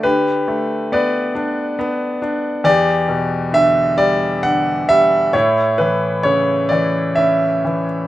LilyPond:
<<
  \new Staff \with { instrumentName = "Grand piano" } { \time 3/4 \key a \mixolydian \tempo 4 = 67 << { b'4 d''4. r8 | d''4 e''8 d''8 fis''8 e''8 | cis''8 b'8 cis''8 d''8 e''8. r16 | } \\ { g'4 b'4. r8 | g'4. r4. | e'4. r4. | } >> }
  \new Staff \with { instrumentName = "Grand piano" } { \clef bass \time 3/4 \key a \mixolydian d8 a8 b8 d'8 b8 d'8 | e,8 b,8 d8 g8 d8 g8 | a,8 e8 cis8 e8 cis'8 e8 | }
>>